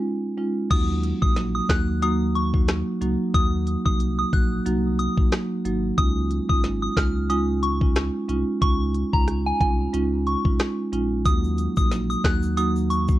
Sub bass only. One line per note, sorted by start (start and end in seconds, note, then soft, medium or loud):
0.71 1.13 D#2 loud
1.22 1.61 A#1 medium
1.69 2.83 D#2 medium
3.01 3.16 C#2 loud
3.34 3.77 D#2 loud
3.86 4.25 C2 medium
4.33 4.60 A#1 loud
4.66 5.08 C2 loud
5.18 5.29 A#1 medium
5.65 5.92 G#1 loud
5.98 6.40 C#2 loud
6.50 6.89 G#1 medium
6.97 8.10 C#2 medium
8.29 8.44 C2 loud
8.62 9.04 C#2 loud
9.13 9.52 C#2 medium
9.60 9.88 C2 medium
9.94 10.36 C#2 loud
10.45 10.57 C2 medium
10.93 11.27 A#1 medium
11.26 11.68 D#2 loud
11.77 12.16 A#1 medium
12.24 13.19 D#2 medium